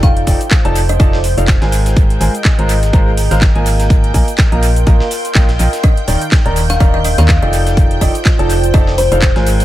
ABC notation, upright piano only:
X:1
M:4/4
L:1/16
Q:"Swing 16ths" 1/4=124
K:Fdor
V:1 name="Upright piano"
[F,E=Adg]2 [F,EAdg] z2 [F,EAd=a] z2 [F,EAda] z2 [F,EAdf] z [_A,FBc_a]3- | [A,FBca]2 [A,FBca] z2 [A,FBcb] z2 [A,FBcb] z2 [A,FBcf] z [B,FBea]3- | [B,FBea]2 [B,FBea] z2 [B,FBeb] z2 [B,FBeb] z3 [B,FBeg] z [FBeg] z | z2 [E,EBdg] z2 [E,EBdb] z2 [E,EBdb] z2 [E,EBdf] z [F,E=Adg]3- |
[F,E=Adg]2 [F,EAdg] z2 [F,EAd=a] z2 [F,EAda] z2 [F,EAdf] z [_A,FBc_a]3 |]